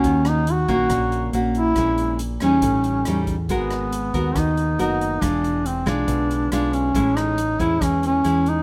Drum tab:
HH |xxxxxxxx|xxxxxxxx|xxxxxxxx|xxxxxxxx|
SD |-r--r---|r--r--r-|-r--r---|r--r--r-|
BD |o--oo---|o---o--o|o--oo---|o--oo---|

HH |xxxxxxxx|
SD |-r--r---|
BD |o--oo---|